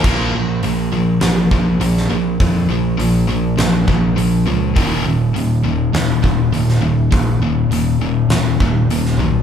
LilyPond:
<<
  \new Staff \with { instrumentName = "Distorted electric guitar" } { \clef bass \time 4/4 \key bes \phrygian \tempo 4 = 102 <bes, f bes>8 <bes, f>8 <bes, f>8 <bes, f>8 <bes, f>8 <bes, f>8 <bes, f>8 <bes, f>8 | <bes, f>8 <bes, f>8 <bes, f>8 <bes, f>8 <bes, f>8 <bes, f>8 <bes, f>8 <bes, f>8 | <ees, bes, ees>8 <ees, bes,>8 <ees, bes,>8 <ees, bes,>8 <ees, bes,>8 <ees, bes,>8 <ees, bes,>8 <ees, bes,>8 | <ees, bes,>8 <ees, bes,>8 <ees, bes,>8 <ees, bes,>8 <ees, bes,>8 <ees, bes,>8 <ees, bes,>8 <ees, bes,>8 | }
  \new Staff \with { instrumentName = "Distorted electric guitar" } { \clef bass \time 4/4 \key bes \phrygian <bes, f bes>8 <bes, f>8 <bes, f>8 <bes, f>8 <bes, f>8 <bes, f>8 <bes, f>8 <bes, f>8 | <bes, f>8 <bes, f>8 <bes, f>8 <bes, f>8 <bes, f>8 <bes, f>8 <bes, f>8 <bes, f>8 | <ees, bes, ees>8 <ees, bes,>8 <ees, bes,>8 <ees, bes,>8 <ees, bes,>8 <ees, bes,>8 <ees, bes,>8 <ees, bes,>8 | <ees, bes,>8 <ees, bes,>8 <ees, bes,>8 <ees, bes,>8 <ees, bes,>8 <ees, bes,>8 <ees, bes,>8 <ees, bes,>8 | }
  \new Staff \with { instrumentName = "Picked electric bass" } { \clef bass \time 4/4 \key bes \phrygian bes,,8 bes,,8 bes,,8 bes,,8 bes,,8 bes,,8 bes,,8 bes,,8 | f,8 bes,,8 bes,,8 bes,,8 bes,,8 bes,,8 bes,,8 des,8 | ees,,8 ees,,8 ees,,8 ees,,8 ees,,8 ees,,8 ees,,8 ees,,8 | bes,,8 ees,,8 ees,,8 ees,,8 ees,,8 ees,,8 ees,,8 ces,8 | }
  \new DrumStaff \with { instrumentName = "Drums" } \drummode { \time 4/4 <cymc bd>4 hho4 <hho sn>8 bd8 hho16 sn8. | <hho bd>4 hho4 <hho sn>8 bd8 hho4 | <hho bd>4 hho4 <hho sn>8 bd8 hho16 sn8. | <hho bd>4 hho4 <hho sn>8 bd8 hho16 sn8. | }
>>